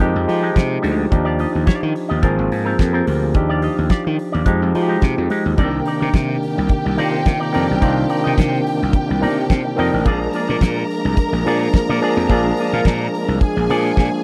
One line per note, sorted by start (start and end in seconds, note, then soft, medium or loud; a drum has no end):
0.00 0.11 F2 medium
0.00 0.22 F3 medium
0.00 0.21 G#3 medium
0.00 0.23 G#3 medium
0.00 0.14 D#4 medium
0.00 0.23 D#4 medium
0.00 0.13 G4 medium
0.00 0.23 G4 loud
0.00 0.14 A#4 medium
0.00 closed hi-hat medium
0.14 0.25 F2 medium
0.14 muted clean electric guitar stroke soft
0.27 0.79 F3 medium
0.27 0.49 F3 loud
0.27 0.79 G#3 medium
0.27 0.79 D#4 medium
0.27 0.79 G4 medium
0.27 muted clean electric guitar stroke soft
0.27 open hi-hat medium
0.42 0.59 G#3 medium
0.42 0.58 D#4 medium
0.42 0.58 G4 medium
0.56 0.77 C3 medium
0.56 kick loud
0.56 snare loud
0.56 closed hi-hat medium
0.69 muted clean electric guitar stroke soft
0.82 1.05 D2 medium
0.82 1.04 G#3 medium
0.82 0.97 D#4 loud
0.82 0.96 G4 loud
0.82 open hi-hat medium
0.97 muted clean electric guitar stroke soft
1.10 1.44 D#2 loud
1.10 1.80 F3 medium
1.10 1.80 D4 medium
1.10 1.80 D#4 medium
1.10 1.80 G4 medium
1.10 muted clean electric guitar stroke soft
1.10 kick loud
1.10 closed hi-hat medium
1.25 1.37 F4 medium
1.25 1.39 G4 medium
1.25 1.40 D5 medium
1.39 1.56 F4 soft
1.39 1.53 G4 medium
1.39 1.52 D#5 medium
1.39 open hi-hat medium
1.53 1.65 D#2 medium
1.53 muted clean electric guitar stroke soft
1.66 1.88 F4 medium
1.66 1.82 G4 medium
1.66 1.80 D5 medium
1.66 muted slap bass stroke soft
1.66 kick medium
1.66 snare loud
1.66 closed hi-hat medium
1.81 1.92 D#3 medium
1.81 muted clean electric guitar stroke soft
1.94 muted clean electric guitar stroke soft
1.94 open hi-hat medium
2.09 2.21 D#2 medium
2.09 2.22 F4 soft
2.09 2.23 G4 medium
2.09 2.25 D#5 medium
2.22 2.34 G#1 loud
2.22 2.46 F3 medium
2.22 2.46 A#3 medium
2.22 2.44 C4 medium
2.22 2.46 C4 medium
2.22 2.37 F4 medium
2.22 2.47 G#4 loud
2.22 2.36 A#4 medium
2.22 kick loud
2.22 closed hi-hat medium
2.37 2.48 G#1 medium
2.37 muted clean electric guitar stroke soft
2.50 2.72 G#2 loud
2.50 muted clean electric guitar stroke soft
2.50 open hi-hat medium
2.65 2.78 C4 medium
2.65 2.78 F4 medium
2.65 2.80 F4 soft
2.65 2.79 G#4 medium
2.65 2.79 A#4 medium
2.79 3.00 F2 medium
2.79 2.94 G4 medium
2.79 2.94 A#4 medium
2.79 kick loud
2.79 snare medium
2.79 closed hi-hat medium
2.93 3.05 C4 medium
2.93 3.06 F4 medium
2.93 3.07 G#4 medium
2.93 3.06 A#4 medium
2.93 3.07 C5 medium
3.07 3.35 D2 medium
3.07 3.23 G4 medium
3.07 3.22 A#4 medium
3.07 muted clean electric guitar stroke soft
3.07 open hi-hat medium
3.21 3.49 F4 soft
3.21 3.49 G#4 soft
3.21 muted clean electric guitar stroke soft
3.34 3.67 D#2 loud
3.34 4.04 F3 medium
3.34 4.04 D4 medium
3.34 4.04 D#4 medium
3.34 4.04 G4 medium
3.34 muted clean electric guitar stroke soft
3.34 kick loud
3.34 closed hi-hat medium
3.49 3.61 F4 medium
3.49 3.62 G4 medium
3.49 3.63 D5 medium
3.62 3.80 F4 medium
3.62 3.78 G4 medium
3.62 3.77 D#5 medium
3.62 open hi-hat medium
3.78 3.88 D#2 medium
3.78 muted clean electric guitar stroke soft
3.90 4.11 F4 medium
3.90 4.04 G4 medium
3.90 4.03 D5 medium
3.90 kick loud
3.90 snare loud
3.90 closed hi-hat medium
4.05 4.16 D#3 loud
4.05 muted clean electric guitar stroke medium
4.18 muted clean electric guitar stroke soft
4.18 open hi-hat medium
4.32 4.44 D#2 loud
4.32 4.46 F4 soft
4.32 4.46 G4 soft
4.32 4.49 D5 medium
4.46 4.57 F2 medium
4.46 4.69 F3 loud
4.46 4.67 G#3 medium
4.46 4.69 G#3 medium
4.46 4.61 D#4 medium
4.46 4.70 D#4 medium
4.46 4.60 G4 medium
4.46 4.70 G4 medium
4.46 kick loud
4.46 closed hi-hat medium
4.61 4.72 F2 medium
4.61 muted clean electric guitar stroke soft
4.74 5.26 F3 medium
4.74 4.96 F3 loud
4.74 5.26 G#3 medium
4.74 5.26 D#4 medium
4.74 4.82 F#4 medium
4.74 muted clean electric guitar stroke soft
4.74 open hi-hat medium
4.82 5.30 G4 medium
4.88 5.05 G#3 medium
4.88 5.05 D#4 medium
4.88 5.04 G4 medium
5.02 5.14 C3 medium
5.02 kick loud
5.02 snare medium
5.02 closed hi-hat medium
5.16 5.28 F2 medium
5.16 muted clean electric guitar stroke soft
5.30 5.52 G#3 medium
5.30 5.45 D#4 medium
5.30 5.44 G4 medium
5.30 open hi-hat medium
5.45 5.55 D#2 medium
5.45 muted clean electric guitar stroke soft
5.58 5.80 C2 loud
5.58 10.02 C3 medium
5.58 6.27 D#3 medium
5.58 10.02 D#3 medium
5.58 14.24 A#3 medium
5.58 6.27 C4 medium
5.58 14.24 D4 medium
5.58 6.27 D4 medium
5.58 5.79 D#4 medium
5.58 10.02 G4 medium
5.58 5.73 A#4 medium
5.58 6.27 A#4 medium
5.58 5.72 D5 medium
5.58 10.02 G5 medium
5.58 kick loud
5.58 closed hi-hat medium
5.73 muted clean electric guitar stroke soft
5.86 6.01 D#4 medium
5.86 6.00 A#4 medium
5.86 5.99 D5 medium
5.86 open hi-hat medium
6.01 6.11 C3 medium
6.01 6.13 D#4 medium
6.01 6.14 A#4 medium
6.01 6.14 D5 medium
6.14 6.35 C3 medium
6.14 muted clean electric guitar stroke soft
6.14 kick loud
6.14 snare loud
6.14 closed hi-hat medium
6.29 muted clean electric guitar stroke soft
6.43 open hi-hat medium
6.58 6.68 C2 loud
6.58 muted clean electric guitar stroke soft
6.69 muted clean electric guitar stroke soft
6.69 kick loud
6.69 closed hi-hat medium
6.85 6.95 C2 medium
6.85 muted clean electric guitar stroke soft
6.97 7.20 C3 loud
6.97 7.32 D#3 medium
6.97 7.33 C4 medium
6.97 7.33 D4 medium
6.97 7.19 D#4 medium
6.97 7.33 F4 medium
6.97 7.12 A#4 medium
6.97 7.11 D5 loud
6.97 open hi-hat medium
7.12 muted clean electric guitar stroke medium
7.25 7.37 C3 loud
7.25 muted clean electric guitar stroke soft
7.25 kick loud
7.25 snare medium
7.25 closed hi-hat medium
7.40 7.51 D#4 soft
7.40 7.52 A#4 soft
7.40 7.53 D5 medium
7.53 7.66 F2 medium
7.53 7.71 D#3 medium
7.53 7.72 C4 medium
7.53 7.72 D4 medium
7.53 7.75 D#4 medium
7.53 7.68 A#4 medium
7.53 7.72 A#4 medium
7.53 7.67 D5 medium
7.53 open hi-hat medium
7.68 7.80 B1 medium
7.68 muted clean electric guitar stroke soft
7.80 8.03 C2 loud
7.80 8.50 D#3 medium
7.80 8.51 C4 medium
7.80 8.51 D4 medium
7.80 8.02 D#4 medium
7.80 8.51 F4 medium
7.80 7.97 A#4 medium
7.80 7.96 D5 medium
7.80 kick loud
7.80 closed hi-hat medium
7.97 muted clean electric guitar stroke soft
8.09 8.25 D#4 medium
8.09 8.24 A#4 medium
8.09 8.24 D5 medium
8.09 open hi-hat medium
8.24 8.36 C3 medium
8.24 8.36 D#4 medium
8.24 8.37 A#4 medium
8.24 8.39 D#5 medium
8.38 8.59 C3 loud
8.38 muted clean electric guitar stroke soft
8.38 kick medium
8.38 snare loud
8.38 closed hi-hat medium
8.52 muted clean electric guitar stroke soft
8.67 open hi-hat medium
8.81 8.92 C2 medium
8.81 muted clean electric guitar stroke soft
8.81 snare soft
8.93 muted clean electric guitar stroke soft
8.93 kick loud
8.93 closed hi-hat medium
9.09 9.24 C2 loud
9.09 muted clean electric guitar stroke soft
9.21 9.43 C3 loud
9.21 9.56 D#3 medium
9.21 9.56 C4 medium
9.21 9.56 D4 medium
9.21 9.43 D#4 medium
9.21 9.56 A#4 medium
9.21 9.37 A#4 medium
9.21 9.36 D5 medium
9.21 open hi-hat medium
9.38 muted clean electric guitar stroke medium
9.50 9.61 C3 loud
9.50 kick loud
9.50 snare medium
9.50 closed hi-hat medium
9.65 muted clean electric guitar stroke soft
9.76 9.89 F2 medium
9.76 9.94 D#3 medium
9.76 9.95 C4 medium
9.76 9.95 D4 medium
9.76 9.99 D#4 medium
9.76 9.95 A#4 medium
9.76 9.93 A#4 loud
9.76 9.93 D#5 loud
9.76 open hi-hat medium
9.93 10.03 A1 medium
9.93 muted clean electric guitar stroke soft
10.04 10.27 A#1 loud
10.04 10.73 F3 medium
10.04 14.24 G#3 medium
10.04 10.74 A#3 medium
10.04 10.12 C4 medium
10.04 10.27 F4 medium
10.04 10.74 G#4 loud
10.04 10.21 G#4 medium
10.04 13.37 A#4 medium
10.04 10.20 D5 medium
10.04 13.37 A#5 medium
10.04 kick loud
10.04 closed hi-hat medium
10.11 10.77 D4 medium
10.21 muted clean electric guitar stroke soft
10.33 10.49 F4 medium
10.33 10.48 G#4 medium
10.33 10.47 D5 medium
10.33 open hi-hat medium
10.49 10.59 A#2 loud
10.49 10.61 F4 medium
10.49 10.62 G#4 medium
10.49 10.62 D5 medium
10.61 10.82 A#2 loud
10.61 muted clean electric guitar stroke soft
10.61 kick medium
10.61 snare loud
10.61 closed hi-hat medium
10.77 muted clean electric guitar stroke soft
10.90 open hi-hat medium
11.05 11.15 C2 loud
11.05 muted clean electric guitar stroke soft
11.17 muted clean electric guitar stroke soft
11.17 kick loud
11.17 closed hi-hat medium
11.33 11.42 A#1 medium
11.33 muted clean electric guitar stroke soft
11.45 11.67 A#2 medium
11.45 11.79 F3 medium
11.45 11.80 A#3 medium
11.45 11.80 D4 medium
11.45 11.67 F4 medium
11.45 11.80 G#4 medium
11.45 11.61 G#4 medium
11.45 11.60 D5 medium
11.45 open hi-hat medium
11.61 muted clean electric guitar stroke soft
11.74 muted slap bass stroke medium
11.74 muted clean electric guitar stroke soft
11.74 kick loud
11.74 snare loud
11.74 closed hi-hat medium
11.89 11.99 A#2 loud
11.89 12.01 F4 soft
11.89 12.02 G#4 medium
11.89 12.03 D5 medium
12.01 12.19 F3 medium
12.01 12.19 A#3 medium
12.01 12.19 D4 medium
12.01 12.23 F4 medium
12.01 12.20 G#4 medium
12.01 12.18 G#4 medium
12.01 12.17 D5 loud
12.01 open hi-hat medium
12.17 12.26 F2 loud
12.17 muted clean electric guitar stroke soft
12.29 12.51 A#1 loud
12.29 12.98 F3 medium
12.29 12.98 A#3 medium
12.29 12.98 D4 medium
12.29 12.51 F4 medium
12.29 12.98 G#4 loud
12.29 12.46 G#4 medium
12.29 12.45 D5 medium
12.29 kick loud
12.29 closed hi-hat medium
12.46 muted clean electric guitar stroke soft
12.57 12.74 F4 medium
12.57 12.73 G#4 medium
12.57 12.73 D5 medium
12.57 open hi-hat medium
12.73 12.83 A#2 medium
12.73 12.85 F4 medium
12.73 12.86 G#4 medium
12.73 12.87 F5 medium
12.85 13.06 A#2 medium
12.85 muted clean electric guitar stroke soft
12.85 kick medium
12.85 snare loud
12.85 closed hi-hat medium
13.01 muted clean electric guitar stroke soft
13.14 open hi-hat medium
13.28 13.38 C2 medium
13.28 muted clean electric guitar stroke soft
13.41 14.24 G#4 medium
13.41 14.24 G#5 medium
13.41 muted clean electric guitar stroke soft
13.41 kick loud
13.41 closed hi-hat medium
13.56 13.66 A#1 medium
13.56 muted clean electric guitar stroke soft
13.69 13.90 A#2 loud
13.69 14.03 F3 medium
13.69 14.04 A#3 medium
13.69 14.04 D4 medium
13.69 13.90 F4 medium
13.69 13.84 G#4 medium
13.69 14.04 G#4 medium
13.69 13.83 D5 medium
13.69 open hi-hat medium
13.85 muted clean electric guitar stroke soft
13.97 14.08 A#2 medium
13.97 kick loud
13.97 snare medium
14.11 muted clean electric guitar stroke soft